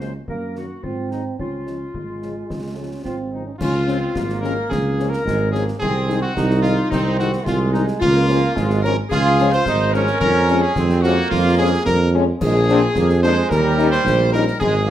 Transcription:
Already playing: C#2
0.00 C#3 F#3 G#3 A#3 C#4 C5, snare
0.28 F#2 A#3 A#4, concert bass drum
0.55 D#3 F#3 A#3 F#4, snare
0.83 G#2 C4 F4, concert bass drum
1.10 D#3 F#3 G#3 C4 D#4, snare
1.39 C#2 C#4 F4, concert bass drum
1.66 C#3 F3 G#3 C#4, snare
1.94 G#1 G#3, concert bass drum
2.20 C#3 F3 G#3 C#4, snare
2.50 C#2, concert bass drum, snare
2.76 C#3 F3 G#3 C#4
3.03 G#1 C4 F4, concert bass drum, snare
3.32 C#3 F3 G#3 D#4
3.46 C#4
3.58 C#2 C#4 F4, concert bass drum, crash
3.86 F3 G#3 C4 C#4, snare
4.14 G#1 A#3, concert bass drum, snare
4.29 snare
4.41 F3 G#3 C#4 A#4, snare
4.69 C#2 G#4, concert bass drum, snare
4.99 F3 G#3 C#4, snare
5.10 A#4, snare
5.25 G#1 G#3, concert bass drum, snare
5.51 F3 G#3 A#3 C#4 G#4, snare
5.68 snare
5.79 C2 C4 G#4, concert bass drum, crash
6.07 D#3 G#3 D#4, snare
6.21 F#4
6.34 C2 D#4, concert bass drum, snare
6.51 snare
6.62 D#3 G#3 D#4 F4, snare
6.90 C2 C4 D#4, concert bass drum, snare
7.17 D#3 G#3 D#4 F#4, snare
7.33 snare
7.44 C2 G#3 F4, concert bass drum, snare
7.72 D#3 G#3 D#4, snare
7.88 snare
7.99 C#2 A#3 F4, concert bass drum, crash
8.28 F3 G#3 C#4, snare
8.55 G#1 G#3, concert bass drum, snare
8.70 snare
8.82 F3 G#3 C#4 A#4, snare
9.09 F4 G#4, concert bass drum, snare
9.13 C#2
9.38 F3 G#3 C#4, snare
9.51 C5, snare
9.66 G#1 D#4, concert bass drum, snare
9.92 F3 G#3 C#4 A#4, snare
10.07 snare
10.19 F2 A#4, concert bass drum, crash
10.48 F3 G#3 C#4, snare
10.62 G#4
10.76 F2 C4, concert bass drum, snare
10.89 snare
11.02 F3 G#3 A#3 C#4 F#4, snare
11.30 F2 F4, concert bass drum, snare
11.58 F3 G#3 C#4 G#4
11.86 F2 A#4, concert bass drum, snare
12.14 F3 G#3 C#4
12.41 A#1 G#3 G#4, concert bass drum, crash
12.69 F3 A#3 C4 D4, snare
12.95 F2 A#3, concert bass drum, snare
13.09 snare
13.23 F3 G#3 A#3 D4 C5, snare
13.50 D#2 G3 A#4, concert bass drum, snare
13.78 G3 C#4 D#4, snare
13.91 C5, snare
14.04 A#1, concert bass drum, snare
14.32 G3 C#4 D#4 A#4, snare
14.48 snare
14.60 G#1 G#3 G#4, concert bass drum, crash
14.86 A#3

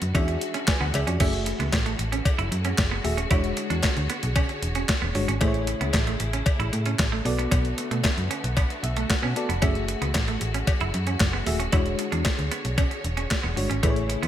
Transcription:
Already playing: D3 A3 B3 F#4
0.02 F#2, closed hi-hat
0.14 E2 E3 G#3 C#4 D4 F#4 G#4 E5, kick, closed hi-hat, cowbell
0.28 muted clean electric guitar stroke, closed hi-hat
0.41 closed hi-hat
0.54 C#4, closed hi-hat
0.67 B4 G#5, kick, snare, clap, closed hi-hat, cowbell
0.80 D2 B3 F#5
0.94 C#2 G#4 E5, muted clean electric guitar stroke, closed hi-hat, cowbell
1.07 F2 C#4 F#4 D5, closed hi-hat
1.20 F#1 E3 A3 C#4 F#4 G#4 E5, kick, closed hi-hat, crash, cowbell
1.33 closed hi-hat
1.46 muted clean electric guitar stroke, closed hi-hat
1.59 C#2 B3, closed hi-hat
1.72 A1, kick, snare, clap, closed hi-hat, cowbell
1.86 A3, closed hi-hat
1.99 A1, muted clean electric guitar stroke, closed hi-hat
2.12 C#4, closed hi-hat
2.25 kick, closed hi-hat, cowbell
2.38 F#1 E4, closed hi-hat
2.52 F#2, muted clean electric guitar stroke, closed hi-hat
2.65 C#4, closed hi-hat
2.78 F#1, kick, snare, clap, closed hi-hat, cowbell
2.91 B3
3.04 D#1 A3 F#4 G#4 E5, muted clean electric guitar stroke, open hi-hat
3.17 C#4, closed hi-hat
3.30 E1 D3 G#3 D4 E4 F#4 C#5, kick, closed hi-hat, cowbell
3.44 closed hi-hat
3.57 muted clean electric guitar stroke, closed hi-hat
3.70 E2 D4, closed hi-hat
3.83 kick, snare, clap, closed hi-hat, cowbell
3.97 D2, closed hi-hat
4.10 B3, closed hi-hat
4.23 B1, closed hi-hat
4.36 C#4, kick, closed hi-hat, cowbell
4.49 muted clean electric guitar stroke, closed hi-hat
4.62 E1, closed hi-hat
4.75 C#4, closed hi-hat
4.89 kick, snare, clap, closed hi-hat, cowbell
5.02 E1 B3
5.14 G1 G#3 D4 F#4 C#5, muted clean electric guitar stroke, open hi-hat
5.28 G#1 C#4, closed hi-hat
5.40 A1 C#3 A3 E4 G#4 C5, kick, closed hi-hat, cowbell
5.48 C#5
5.54 closed hi-hat
5.67 muted clean electric guitar stroke, closed hi-hat
5.81 C#2 B3, closed hi-hat
5.93 A1, kick, snare, clap, closed hi-hat, cowbell
6.07 A3, closed hi-hat
6.20 A1, muted clean electric guitar stroke, closed hi-hat
6.33 C#4, closed hi-hat
6.46 kick, closed hi-hat, cowbell
6.59 A1 E4, closed hi-hat
6.73 A2, muted clean electric guitar stroke, closed hi-hat
6.86 C#4, closed hi-hat
6.99 A1, kick, snare, clap, closed hi-hat, cowbell
7.12 A3
7.24 B1 D3 B3 F#4 A4 D5, muted clean electric guitar stroke, open hi-hat
7.39 B3, closed hi-hat
7.51 B1 B3, kick, closed hi-hat, cowbell
7.65 closed hi-hat
7.78 muted clean electric guitar stroke, closed hi-hat
7.91 B2 A3, closed hi-hat
8.04 kick, snare, clap, closed hi-hat, cowbell
8.17 F#2, closed hi-hat
8.31 C#4, closed hi-hat
8.44 B1, closed hi-hat
8.57 B3, kick, closed hi-hat, cowbell
8.70 muted clean electric guitar stroke, closed hi-hat
8.83 B1 E5, closed hi-hat
8.97 A3, closed hi-hat
9.10 F#5, kick, snare, clap, closed hi-hat, cowbell
9.23 B2 C#4
9.36 B3 F#4 A4 D5 A5, muted clean electric guitar stroke, closed hi-hat
9.49 F1 B3, closed hi-hat
9.62 F#1 E3 A3 C#4 F#4 G#4 E5, kick, closed hi-hat, cowbell
9.75 closed hi-hat
9.88 muted clean electric guitar stroke, closed hi-hat
10.02 C#2 B3, closed hi-hat
10.14 A1, kick, snare, clap, closed hi-hat, cowbell
10.28 A3, closed hi-hat
10.41 A1, muted clean electric guitar stroke, closed hi-hat
10.54 C#4, closed hi-hat
10.67 kick, closed hi-hat, cowbell
10.81 F#1 E4, closed hi-hat
10.94 F#2, muted clean electric guitar stroke, closed hi-hat
11.07 C#4, closed hi-hat
11.20 F#1, kick, snare, clap, closed hi-hat, cowbell
11.33 B3
11.46 D#1 A3 F#4 G#4 E5, muted clean electric guitar stroke, open hi-hat
11.60 C#4, closed hi-hat
11.72 E1 D3 G#3 D4 E4 F#4 C#5, kick, closed hi-hat, cowbell
11.86 closed hi-hat
11.99 muted clean electric guitar stroke, closed hi-hat
12.12 E2 D4, closed hi-hat
12.25 kick, snare, clap, closed hi-hat, cowbell
12.39 D2, closed hi-hat
12.51 B3, closed hi-hat
12.65 B1, closed hi-hat
12.78 C#4, kick, closed hi-hat, cowbell
12.91 muted clean electric guitar stroke, closed hi-hat
13.04 E1, closed hi-hat
13.17 C#4, closed hi-hat
13.31 kick, snare, clap, closed hi-hat, cowbell
13.43 E1 B3
13.56 G1 G#3 D4 F#4 C#5, muted clean electric guitar stroke, open hi-hat
13.70 G#1 C#4, closed hi-hat
13.83 A1 C#3 A3 E4 G#4 B4, kick, closed hi-hat, cowbell
13.90 C#5
13.96 closed hi-hat
14.09 muted clean electric guitar stroke, closed hi-hat
14.23 E2 B3, closed hi-hat

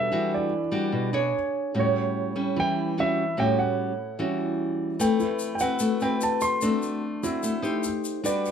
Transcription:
Already playing: D4 F#4 A4 B4 E5
0.12 E3 G3 D4 F#4
0.34 D5
0.72 G3 D4 F#4
0.92 B2
1.13 D4 G#4 C#5
1.74 A2 G3 C#4 F#4
1.80 C#5
2.36 G3 C#4
2.56 E3 E4 G5
2.98 G3 C#4 F#4 E5
3.37 A2 G3 C#4 F#4 G5
3.59 F#5
4.19 E3 G3 C#4 F#4
4.99 A3 C4 B4 G5, shaker
5.20 E4, shaker
5.39 shaker
5.55 G5
5.59 C4 F#4 B4 F#5, shaker
5.79 A3, shaker
6.00 C4 F#4 B4 G5, shaker
6.21 A5, shaker
6.41 C6, shaker
6.61 A3 C4 D4 F#4, shaker
6.82 shaker
7.23 C4 E4 F#4, shaker
7.43 A3, shaker
7.62 D#4 G4 C5, shaker
7.83 shaker
8.04 shaker
8.24 G3 D4 F#4 B4 D5, shaker
8.45 shaker

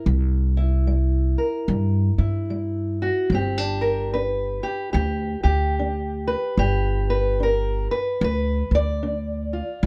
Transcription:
0.06 C2 C3
0.57 E4
0.87 G3
1.38 A#4
1.68 G2 C3
2.18 G2 E4
2.50 G3
3.02 F#4
3.30 G1 G3 C4
3.35 G4
3.58 D4
3.81 A#4
4.14 D4 B4
4.63 G4
4.93 D2 G4
4.97 D3
5.43 D2 G4
5.79 D4
6.28 B4
6.57 G1 G3 G4
7.10 B4
7.40 D4 A#4
7.91 B4
8.21 D2 D3 B4
8.71 D2 D5
9.03 D4
9.53 F4
9.83 C2

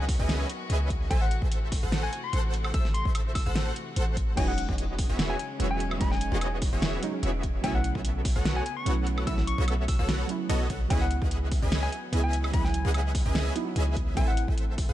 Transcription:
Already playing: C#2 D#3 F#3 B3 C#4 F#4 G#4 B4 D#5 E5 F#5
0.09 kick, open hi-hat
0.19 C#2 C#4 G#4 B4 D#5 E5 G#5
0.29 snare, closed hi-hat
0.49 closed hi-hat
0.70 C#2 C#4 G#4 B4 D#5 E5 G#5, closed hi-hat
0.90 kick, closed hi-hat
1.10 A1 C3 E3 A3 A4 C5 E5 G#5, kick, closed hi-hat
1.22 F#5
1.31 closed hi-hat
1.42 A1 A4 C5 E5, kick
1.52 closed hi-hat
1.72 kick, open hi-hat
1.83 A1 A4 C5 F#5
1.92 snare, closed hi-hat
2.03 G#5
2.13 G#5, closed hi-hat
2.24 C6
2.33 A1 A4 C5 F#5, closed hi-hat
2.54 closed hi-hat
2.65 high woodblock
2.74 A1 A4 C5 E5 E6, kick, closed hi-hat
2.85 snare
2.94 C6, closed hi-hat
3.05 A1 A4 C5 E5, kick
3.15 closed hi-hat, high woodblock
3.35 E6, kick, open hi-hat, high woodblock
3.46 A1 A4 C5 F#5 E6
3.56 snare, closed hi-hat
3.76 closed hi-hat
3.96 A1 A4 C5 F#5, closed hi-hat
4.17 kick, closed hi-hat
4.36 E1 C#3 E3 F#3 G#3 B3 C#4 F#4 G#4 C#5 D#5 G#5, kick, closed hi-hat, crash
4.40 D#4
4.48 F#5
4.58 closed hi-hat
4.69 E1 E3 B3 F#4 G#4 C#5 D#5, kick
4.78 closed hi-hat
4.99 kick, open hi-hat
5.09 E1 E3 B3 F#4 G#4 C#5 E5
5.19 snare, closed hi-hat
5.30 G#5
5.39 G#5, closed hi-hat
5.59 E1 E3 F#3 G#3 B3 C#4 F#4 G#4 C#5 E5, closed hi-hat
5.71 G#5
5.80 closed hi-hat
5.91 high woodblock
5.98 E1 E3 F#3 G#3 B3 C#4 F#4 G#4 C#5 D#5 B5, kick, closed hi-hat
6.02 D#4
6.11 G#5, snare
6.21 closed hi-hat
6.32 E1 E3 B3 F#4 G#4 C#5 D#5
6.41 closed hi-hat, high woodblock
6.62 kick, open hi-hat
6.73 E1 E3 B3 F#4 G#4 C#5 E5
6.82 snare, closed hi-hat
7.02 F#3 G#3 C#4 D#4, closed hi-hat
7.12 F#3 G#3 C#4
7.23 E1 E3 B3 F#4 G#4 C#5 E5, closed hi-hat
7.43 kick, closed hi-hat
7.62 B1 F#3 A3 B3 C#4 F#4 A4 C#5 E5 G#5, kick, closed hi-hat
7.66 E4
7.75 F#5
7.84 closed hi-hat
7.95 B1 B3 F#4 A4 C#5 E5, kick
8.05 closed hi-hat
8.25 kick, open hi-hat
8.36 B1 B3 F#4 A4 C#5 F#5
8.45 snare, closed hi-hat
8.56 G#5
8.66 G#5, closed hi-hat
8.77 C#6
8.85 B1 F#3 A3 B3 C#4 E4 F#4 A4 C#5 F#5, closed hi-hat
9.07 closed hi-hat
9.18 high woodblock
9.25 B1 F#3 A3 B3 C#4 E4 F#4 A4 C#5 E5 E6, kick, closed hi-hat
9.38 snare
9.47 C#6, closed hi-hat
9.58 B1 B3 F#4 A4 C#5 E5
9.68 closed hi-hat, high woodblock
9.88 E6, kick, open hi-hat
9.99 B1 B3 F#4 A4 C#5 F#5 E6
10.09 snare, closed hi-hat
10.27 F#3 A3 C#4 E4, closed hi-hat
10.49 B1 B3 F#4 A4 C#5 D#5, closed hi-hat
10.70 B1 B3 F#4 A4 C#5 F#5, kick, closed hi-hat
10.88 C#2 F#3 B3 C#4 G#4 B4 D#5 E5 F#5 G#5, kick, closed hi-hat
10.92 E4
11.01 F#5
11.11 closed hi-hat
11.22 C#2 C#4 G#4 B4 D#5 E5 F#5, kick
11.31 closed hi-hat
11.52 kick, open hi-hat
11.62 C#2 C#4 G#4 B4 D#5 E5 G#5
11.72 snare, closed hi-hat
11.83 G#5
11.92 G#5, closed hi-hat
12.12 C#2 F#3 B3 C#4 E4 G#4 B4 D#5 E5 G#5, closed hi-hat
12.24 G#5
12.33 closed hi-hat
12.44 high woodblock
12.52 C#2 F#3 B3 C#4 G#4 B4 D#5 E5 F#5 B5, kick, closed hi-hat
12.56 E4
12.65 G#5, snare
12.74 closed hi-hat
12.85 C#2 C#4 G#4 B4 D#5 E5 F#5
12.94 closed hi-hat, high woodblock
13.15 kick, open hi-hat
13.26 C#2 C#4 G#4 B4 D#5 E5 G#5
13.35 snare, closed hi-hat
13.55 F#3 B3 D#4 E4, closed hi-hat
13.65 F#3 B3
13.69 E4
13.76 C#2 C#4 G#4 B4 D#5 E5 G#5, closed hi-hat
13.96 kick, closed hi-hat
14.15 A1 C3 E3 A3 C4 A4 C5 E5 G#5, kick, closed hi-hat
14.19 E4
14.28 F#5
14.37 closed hi-hat
14.48 A1 A4 C5 E5, kick
14.58 closed hi-hat
14.78 kick, open hi-hat
14.89 A1 A4 C5 F#5

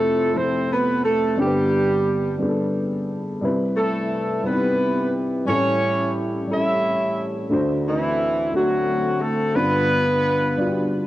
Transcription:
Already playing: F1 F2 F3 A3 C4 E4 A4 C5
0.33 F3 A3 C4 E4 A4 C5
0.72 B3 B4
1.04 A3 A4
1.37 G1 G2 G3 B3 D4 G4 A4
1.47 B4
2.38 G3 B3 D4 G#4
2.49 A4
3.41 C2 C3 G3 C4 E4 B4
3.76 A3 E4 A4
4.43 G3 B3 C4 D#4 E4 G4 B4
4.51 E4
5.45 A1 A2 G3 C#4 E4 G4 A4 C#5
6.47 G3 C#4 E4 A4
6.51 E4 G4 C#5 E5
7.50 D2 D3 A3 D4 F#4 C5
7.88 E3 A3 C4 E4
8.53 F#3 A3 D4 F#4 A4
8.58 A3 C4
9.21 A3 A4
9.55 G1 G2 G3 B3 D4 F4 B4
10.57 G3 D4 F4 F#4
10.67 G4

